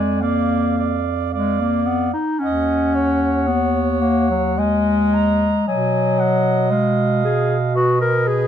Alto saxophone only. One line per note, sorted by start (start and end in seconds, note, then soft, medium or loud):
0.00 0.21 D5 medium
0.22 0.77 D5 medium
0.78 1.32 D5 medium
1.33 2.13 D5 soft
2.43 2.96 D#5 medium
2.95 4.60 C#5 medium
4.58 5.66 D#5 medium
5.67 7.71 D#5 medium
7.75 8.47 B4 medium